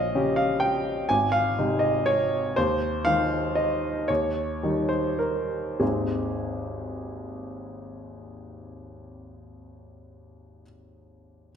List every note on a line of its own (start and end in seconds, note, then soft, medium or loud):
0.00 0.12 A#1 medium
0.00 0.37 D#5 medium
0.00 0.36 F5 medium
0.15 1.06 C#3 soft
0.15 1.06 C#4 soft
0.15 1.06 G4 soft
0.36 0.61 F5 medium
0.60 1.08 G5 medium
1.09 1.56 G#1 medium
1.09 1.32 G#5 medium
1.32 1.81 F5 medium
1.58 2.54 C3 soft
1.58 2.54 G#3 soft
1.58 2.54 D#4 soft
1.79 2.06 D#5 medium
2.06 2.56 C#5 medium
2.56 3.05 D#2 medium
2.56 3.06 C5 medium
3.05 4.05 D#3 soft
3.05 4.05 G#3 soft
3.05 4.05 D#4 soft
3.05 3.56 F5 medium
3.55 4.08 D#5 medium
4.08 4.61 D#2 medium
4.08 4.90 C#5 medium
4.63 5.78 D#3 soft
4.63 5.78 G3 soft
4.63 5.78 D#4 soft
4.89 5.19 C5 medium
5.19 5.80 A#4 medium
5.80 10.62 G#1 soft
5.80 10.62 D#2 soft
5.80 10.63 G#3 soft
5.80 10.63 C4 soft
5.80 10.63 D#4 soft
5.80 10.62 G#4 soft